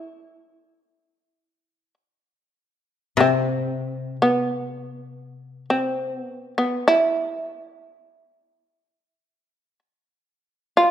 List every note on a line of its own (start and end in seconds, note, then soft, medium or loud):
0.00 1.94 E4 soft
3.17 6.16 C3 soft
3.17 4.16 C4 medium
4.22 5.65 B3 medium
5.70 6.19 C4 medium
6.19 6.54 B3 medium
6.58 6.86 B3 soft
6.88 9.79 E4 medium
10.77 10.91 F4 medium